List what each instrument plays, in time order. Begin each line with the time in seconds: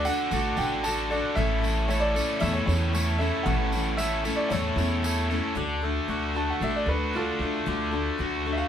Already playing: overdriven electric guitar D3, harmonium F#4 A4 A5
0.05 steel-string acoustic guitar D4 F#4 A4, grand piano F#5, tambourine
0.31 upright bass A1, steel-string acoustic guitar D3 A3 D4 F#4 A4, tambourine
0.57 upright bass A1, steel-string acoustic guitar D4 F#4 A4, grand piano G5, tambourine
0.84 overdriven electric guitar D3, steel-string acoustic guitar A3 D4 F#4 A4, grand piano A5, tambourine
1.10 steel-string acoustic guitar D4 F#4 A4, grand piano D5, tambourine
1.35 upright bass A1, steel-string acoustic guitar A2 E3 A3 C#4 E4 A4, harmonium E4, grand piano E5, tambourine
1.62 steel-string acoustic guitar A3 C#4 E4 A4, tambourine
1.88 steel-string acoustic guitar A3 C#4 E4 A4, grand piano C#5, tambourine
2.00 grand piano D5
2.14 steel-string acoustic guitar A3 C#4 E4 A4, tambourine
2.40 upright bass E2, steel-string acoustic guitar A2 E3 A3 C#4 E4 A4, grand piano E5, tambourine
2.53 grand piano C#5
2.66 upright bass E2, steel-string acoustic guitar A3 C#4 E4 A4, grand piano C#5, tambourine
2.93 steel-string acoustic guitar A3 C#4 E4 A4, tambourine
3.18 steel-string acoustic guitar A3 C#4 E4 A4, grand piano E5, tambourine
3.43 upright bass A1, steel-string acoustic guitar A2 E3 A3 C#4 E4 A4, grand piano F#5
3.48 tambourine
3.72 steel-string acoustic guitar A3 C#4 E4 A4, tambourine
3.97 steel-string acoustic guitar A3 C#4 E4 A4, grand piano E5, tambourine
4.25 steel-string acoustic guitar A3 C#4 E4 A4, tambourine
4.36 grand piano D5
4.49 upright bass E2, steel-string acoustic guitar A2 E3 A3 C#4 E4 A4, grand piano C#5, tambourine
4.76 upright bass E2, steel-string acoustic guitar A3 C#4 E4 A4, tambourine
5.03 steel-string acoustic guitar A3 C#4 E4 A4, tambourine
5.30 steel-string acoustic guitar A3 C#4 E4 A4, tambourine
5.55 upright bass D2, steel-string acoustic guitar D3 A3 D4 F#4 A4
5.82 overdriven electric guitar A3, steel-string acoustic guitar D4 F#4 A4
6.08 upright bass D2, steel-string acoustic guitar A3 D4 F#4 A4
6.34 overdriven electric guitar A3, steel-string acoustic guitar D4 F#4 A4, grand piano A5
6.50 grand piano F#5
6.60 upright bass A1, steel-string acoustic guitar D3 A3 D4 F#4 A4, grand piano E5
6.76 grand piano D5
6.86 upright bass D2, steel-string acoustic guitar D4 F#4 A4, grand piano B4
7.13 steel-string acoustic guitar A3 D4 F#4 A4, grand piano F4 A4
7.39 upright bass D2, overdriven electric guitar A3, steel-string acoustic guitar D4 F#4 A4
7.66 upright bass D2, steel-string acoustic guitar D3 A3 D4 F#4 A4
7.91 overdriven electric guitar A3, steel-string acoustic guitar D4 F#4 A4
8.18 upright bass D2, steel-string acoustic guitar A3 D4 F#4 A4
8.46 overdriven electric guitar A3, steel-string acoustic guitar D4 F#4 A4
8.53 grand piano E5
8.58 grand piano F5